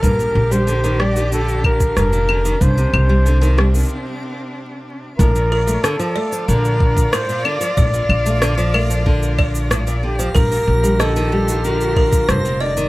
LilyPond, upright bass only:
\new Staff \with { instrumentName = "Upright bass" } { \clef bass \time 4/4 \key bes \major \tempo 4 = 93 bes,,8 bes,,2~ bes,,8 f,,4 | c,8 c,4. r2 | bes,,4 r4 bes,,4 r4 | bes,,8 bes,,2.~ bes,,8 |
bes,,8 bes,,2~ bes,,8 f,,4 | }